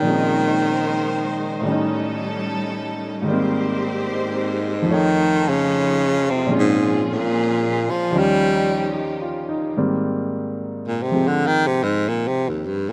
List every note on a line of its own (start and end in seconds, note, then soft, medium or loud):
0.00 1.64 A#2 soft
0.00 1.61 C#3 medium
0.00 2.21 D#3 medium
0.00 1.65 F3 soft
0.00 4.83 D#4 medium
0.00 1.63 C5 medium
0.05 1.64 G#3 medium
0.05 1.66 G#3 soft
0.05 1.67 C4 soft
0.05 1.64 A#4 medium
0.10 1.66 C#4 soft
0.10 1.69 D#4 soft
1.61 3.23 A2 soft
1.61 3.22 D#3 soft
1.65 3.24 G3 medium
1.65 3.25 G3 soft
1.65 3.24 C#4 medium
1.65 3.27 C#4 soft
1.65 3.24 A4 medium
1.71 3.28 D#4 medium
3.22 4.85 G#2 soft
3.22 4.86 D#3 soft
3.22 4.84 C4 medium
3.22 4.84 G4 medium
3.22 4.85 C5 medium
3.28 4.88 G3 soft
3.28 4.89 A#3 soft
3.33 4.90 C4 medium
4.12 4.95 G#2 medium
4.82 6.46 F2 medium
4.82 6.47 F3 soft
4.82 8.07 F3 medium
4.82 6.46 D#4 medium
4.82 9.69 F4 medium
4.82 6.45 A4 medium
4.88 6.49 A3 soft
4.88 6.50 C#5 soft
4.93 5.50 D#3 medium
4.93 6.52 D#4 medium
5.48 6.32 C#3 medium
6.30 6.53 C3 medium
6.47 8.10 A#2 medium
6.47 8.11 F3 soft
6.47 8.11 G#3 soft
6.47 8.10 A#3 medium
6.47 8.10 G#4 medium
6.51 8.12 C4 soft
6.51 8.12 C#4 medium
6.58 7.04 G#2 medium
7.12 7.92 A#2 medium
7.90 8.20 F3 medium
8.11 9.75 D#2 soft
8.11 9.75 D#3 soft
8.11 9.73 F3 medium
8.11 9.75 F3 soft
8.11 9.76 G3 soft
8.11 9.73 D#4 medium
8.11 9.74 G4 medium
8.16 8.97 G3 medium
8.16 9.77 C#4 medium
8.94 9.44 G4 soft
9.22 9.63 F4 soft
9.49 9.90 D#4 soft
9.77 12.92 G#2 soft
9.77 12.92 D#3 soft
9.77 12.92 G3 soft
9.77 12.92 A#3 soft
9.77 11.12 C4 medium
10.88 11.04 A#2 medium
11.02 11.29 C3 medium
11.11 12.92 F3 soft
11.11 12.92 G#3 soft
11.11 12.92 C4 soft
11.28 11.48 D3 medium
11.47 11.68 D#3 medium
11.67 11.85 C3 medium
11.83 12.10 G#2 medium
12.09 12.29 A#2 medium
12.27 12.51 C3 medium
12.49 12.68 D#2 medium
12.66 12.91 G2 medium
12.89 12.92 A#2 medium